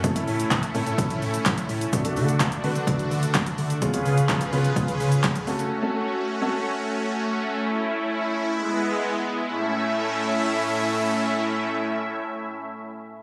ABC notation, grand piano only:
X:1
M:4/4
L:1/16
Q:1/4=127
K:A
V:1 name="Grand piano"
[A,CEA] [A,CEA]4 z [A,CEA]6 z4 | [A,DFA] [A,DFA]4 z [A,DFB]6 z4 | [B,C^EG] [B,CEG]4 z [B,CEB]6 z2 [A,CFA]2 | z [A,CFA]4 z [A,CFA]6 z4 |
z16 | z16 | z16 |]